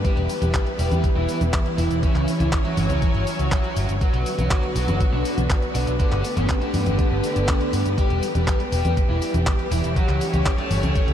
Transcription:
Already playing: B4
0.04 E3 G3 B3 E4 G4, kick, closed hi-hat, cabasa
0.17 E1, closed hi-hat
0.29 open hi-hat, cabasa
0.42 E1 G3 G4, closed hi-hat, high conga, cabasa
0.54 kick, clap, closed hi-hat, cabasa
0.67 closed hi-hat
0.79 E1 G3 G4, open hi-hat, cabasa
0.91 E2, closed hi-hat, high conga, cabasa
1.04 kick, closed hi-hat, cabasa
1.16 E1 E3 E4
1.29 open hi-hat, cabasa
1.41 E1, closed hi-hat, high conga, cabasa
1.53 kick, clap, closed hi-hat, cabasa
1.66 closed hi-hat
1.78 E1 E3 E4, open hi-hat, cabasa
1.91 E1, closed hi-hat, cabasa
2.03 C#3 C#4 C#5, kick, closed hi-hat, cabasa
2.15 C#2, clap, closed hi-hat
2.28 open hi-hat, cabasa
2.40 C#2 E3 E4, closed hi-hat, high conga, cabasa
2.53 kick, clap, closed hi-hat, cabasa
2.65 F#3 F#4, closed hi-hat
2.77 G1, open hi-hat, high conga, cabasa
2.90 C#2, closed hi-hat, high conga, cabasa
3.02 kick, closed hi-hat, cabasa
3.14 G1, closed hi-hat
3.27 open hi-hat, cabasa
3.39 C#2, closed hi-hat, cabasa
3.52 kick, clap, closed hi-hat, cabasa
3.64 closed hi-hat
3.76 G1, open hi-hat, cabasa
3.89 G1, closed hi-hat, cabasa
4.01 D3 F#3 B3 F#4 B4, kick, closed hi-hat, cabasa
4.14 B1, closed hi-hat
4.26 open hi-hat, cabasa
4.38 B1 F#3 F#4, closed hi-hat, high conga, cabasa
4.51 kick, clap, closed hi-hat, cabasa
4.63 closed hi-hat
4.76 B1 F#3 F#4, open hi-hat, cabasa
4.88 F#1, closed hi-hat, high conga, cabasa
5.00 kick, closed hi-hat, cabasa
5.13 B1 D3 D4
5.25 open hi-hat, cabasa
5.38 B1, closed hi-hat, high conga, cabasa
5.50 kick, clap, closed hi-hat, cabasa
5.62 closed hi-hat
5.75 B1 D3 D4, open hi-hat, cabasa
5.87 B1, closed hi-hat, cabasa
6.00 D3 A3 D4 G4, kick, closed hi-hat, cabasa
6.12 G1, clap, closed hi-hat
6.24 open hi-hat, cabasa
6.37 G1 C#3 C#4, closed hi-hat, high conga, cabasa
6.49 kick, clap, closed hi-hat, cabasa
6.62 D3 D4, closed hi-hat
6.74 G2, open hi-hat, high conga, cabasa
6.86 G1, closed hi-hat, high conga, cabasa
6.99 kick, closed hi-hat, cabasa
7.11 G1
7.24 open hi-hat, cabasa
7.36 G1, closed hi-hat, cabasa
7.48 kick, clap, closed hi-hat, cabasa
7.61 closed hi-hat
7.73 G2, open hi-hat, cabasa
7.86 G2, closed hi-hat, cabasa
7.98 E3 G3 G4, kick, closed hi-hat, cabasa
8.10 E1, closed hi-hat
8.23 open hi-hat, cabasa
8.35 E1 G3 G4, closed hi-hat, high conga, cabasa
8.48 kick, clap, closed hi-hat, cabasa
8.60 closed hi-hat
8.72 E1 G3 G4, open hi-hat, cabasa
8.85 E2, closed hi-hat, high conga, cabasa
8.97 kick, closed hi-hat, cabasa
9.09 E1 E3 E4
9.22 open hi-hat, cabasa
9.34 E1, closed hi-hat, high conga, cabasa
9.47 kick, clap, closed hi-hat, cabasa
9.59 closed hi-hat
9.72 E1 E3 E4, open hi-hat, cabasa
9.84 E1, closed hi-hat, cabasa
9.96 F#3 C#4 F#4 C#5, kick, closed hi-hat, cabasa
10.09 C#2, clap, closed hi-hat
10.21 open hi-hat, cabasa
10.33 C#2 G3 G4, closed hi-hat, high conga, cabasa
10.46 kick, clap, closed hi-hat, cabasa
10.58 A3 A4, closed hi-hat
10.71 G1, open hi-hat, high conga, cabasa
10.83 C#2, closed hi-hat, high conga, cabasa
10.95 kick, closed hi-hat, cabasa
11.08 C#2, closed hi-hat

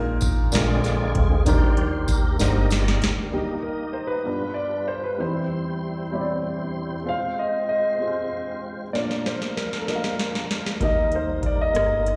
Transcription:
Already playing: A#1 A#2 A#3 D#4 F4 G#4 A#4
0.21 kick, closed hi-hat, tambourine
0.52 A#1 A#2 D3 G#3 A#3 C4 D4 F4 G#4 A#4 D5, snare, closed hi-hat, tambourine
0.84 snare, closed hi-hat, tambourine
1.15 D2, kick, closed hi-hat
1.45 D#2 D#3 F3 G3 A#3 D4 D#4 G4 A#4 C5 D5, kick, closed hi-hat, tambourine
1.77 closed hi-hat
2.08 kick, closed hi-hat, tambourine
2.12 A#4
2.38 G1 A#3 D4 D#4 F#4 G4 A#4 C5, snare, closed hi-hat, tambourine
2.43 D#5
2.47 G4
2.70 F3 G3 D5, snare, closed hi-hat, tambourine
2.88 snare
3.01 D2, snare, closed hi-hat
3.31 D#3 G3 A#3 D#4 G4 A#4 D#5
3.63 A#4
3.93 C5
4.07 B4
4.24 G2 G3 B3 D4 F4 G4 A#4 B4
4.32 B4
4.54 D5
4.88 C5
5.04 B4
5.17 E2 E3 G3 C4 D#4 E4 G4 C5
5.25 E4
6.11 G3 C4 E4 G4 C#5
6.21 D5
7.04 G#3 C4 F4 G#4 C5
7.09 F5
7.39 D#5
7.69 D#5
7.98 G#3 C4 F4 G4 C5
8.07 G#4
8.93 A#2 F3 A#3 C#4 D4 F4 A#4 C#5 D5, snare
9.00 D4 D5
9.11 snare
9.26 C5, snare
9.42 snare
9.56 A#4, snare
9.73 snare
9.80 A4
9.86 A#3 D4 F4 A#4 D#5, snare
9.96 F5
10.04 snare
10.19 snare
10.35 snare
10.51 snare
10.66 snare
10.80 D#2 D#3 G3 A#3 D#4 G4 A#4 D#5, kick, closed hi-hat
10.85 D#5
11.12 C5, closed hi-hat
11.43 D5, kick, closed hi-hat
11.61 D#5
11.73 G1 A#3 D#4 G4 A#4 D#5, cross-stick, closed hi-hat
12.06 cross-stick, closed hi-hat

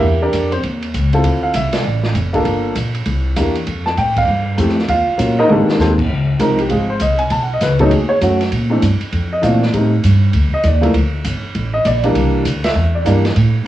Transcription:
Already playing: G4 A#4 E5
0.02 E2
0.22 D4 G4 A#4 D5
0.33 F2, kick, hi-hat pedal, ride
0.52 C4 C5, ride
0.63 D#2, kick, ride
0.82 ride
0.94 C#2, kick, hi-hat pedal, ride
1.13 C4 E4 F4 A4, ride
1.24 D2, kick, ride
1.43 F5
1.54 C2 E5, kick, hi-hat pedal, ride
1.73 D5, snare, ride
1.85 A1
2.04 snare
2.15 F1, kick, hi-hat pedal, ride
2.33 A#3 D4 F4 A4, kick, ride
2.45 G1, kick, ride
2.76 A#1, kick, hi-hat pedal, ride
2.95 ride
3.06 C2, kick, ride
3.36 E2 A#3 D4 E4 G4, kick, hi-hat pedal, ride
3.56 ride
3.67 F2, kick, ride
3.86 A5, snare
3.97 A2 G5, kick, hi-hat pedal, ride
4.17 F5, kick, ride
4.28 G2
4.57 F2 A3 C4 E4 G4, kick, hi-hat pedal, ride
4.68 snare
4.79 snare
4.88 D#2 F4 F5, kick, ride
5.07 muted upright bass stroke
5.17 A#2 F#3 A#3 C#4 F4, kick, hi-hat pedal, ride
5.39 D#4 A#4 C5 D#5
5.47 G#2 D#3 G#3 A#3 C4 D4 G4 A4 D5, mid tom
5.68 snare
5.79 D#2 C4 G4 A4 C5, snare, hi-hat pedal
5.98 kick, crash
6.09 C#2, kick
6.39 C2 F3 G#3 C4 D#4 A#4, kick, hi-hat pedal, ride
6.59 G4, ride
6.68 G#1 F3 G#3 C4 F4 G#4, kick, ride
6.90 C5
7.00 C2 D#5, kick, hi-hat pedal, ride
7.19 G#5, ride
7.30 B1 A5, kick, ride
7.43 F#5
7.54 D#5
7.61 C#2 B4, kick, snare, hi-hat pedal, ride
7.79 F#3 A3 C#4 D#4 A4, kick, ride
7.91 D#2 G#4, ride
8.09 C#5
8.21 F#2 F#3 A3 C#4 F#4, kick, hi-hat pedal, ride
8.41 snare, ride
8.52 A#2, kick, ride
8.70 E3 A3 C4 D4
8.82 G2, kick, hi-hat pedal, ride
9.01 muted upright bass stroke, ride
9.12 F2, kick, ride
9.33 D#5
9.42 A#2 E3 A3 C4 F4 D5, kick, hi-hat pedal, ride
9.62 snare
9.73 A2 G3 A3 C4 D#4, kick, ride
10.04 G2, kick, hi-hat pedal, ride
10.33 D2, kick, ride
10.53 D#5, muted upright bass stroke
10.63 D#2 D5, kick, hi-hat pedal, ride
10.81 F3 A3 A#3 E4, ride
10.94 D2, kick, ride
11.24 G1, kick, hi-hat pedal, ride
11.43 muted upright bass stroke
11.55 A1, kick, ride
11.74 D#5
11.85 A#1 D5, kick, hi-hat pedal, ride
12.03 E3 G3 A#3 D4, ride
12.15 C2, kick, ride
12.45 D2, kick, hi-hat pedal, ride
12.64 E5, snare, ride
12.75 E2
12.95 D5
13.04 G2 E3 G3 A#3 D4, kick, hi-hat pedal, ride
13.25 snare, ride
13.36 A2, kick, ride

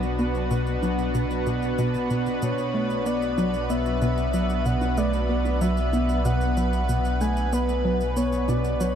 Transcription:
Already playing: B1 B2 B3 D4 F#4 B4
0.03 shaker
0.19 B3, shaker
0.35 high conga, shaker
0.51 B2, shaker
0.67 shaker
0.83 F#3, high conga, shaker
0.99 shaker
1.15 B2, shaker
1.31 shaker
1.46 B2, shaker
1.62 shaker
1.78 B2, shaker
1.94 shaker
2.10 B2, shaker
2.26 shaker
2.42 B1 B2 C#5, shaker
2.58 shaker
2.74 A3
2.90 shaker
3.06 B3 D5, shaker
3.22 shaker
3.38 F#3, high conga, shaker
3.54 shaker
3.70 B3 E5, shaker
3.86 shaker
4.02 B2, shaker
4.17 shaker
4.33 F#3, shaker
4.49 shaker
4.65 B2 F#5, shaker
4.81 high conga, shaker
4.97 A3 D5, shaker
5.13 shaker
5.29 B3
5.45 high conga, shaker
5.61 F#3 E5, shaker
5.77 shaker
5.93 B3, high conga, shaker
6.09 shaker
6.25 B2 F#5, shaker
6.41 shaker
6.57 F#3, shaker
6.73 shaker
6.89 B2, shaker
7.05 shaker
7.21 A3 G#5, shaker
7.37 shaker
7.53 B3 B4, shaker
7.69 shaker
7.85 F#3
8.01 shaker
8.17 B3 C#5, shaker
8.32 shaker
8.48 B2 D5, high conga, shaker
8.64 shaker
8.80 F#3 C#5, shaker

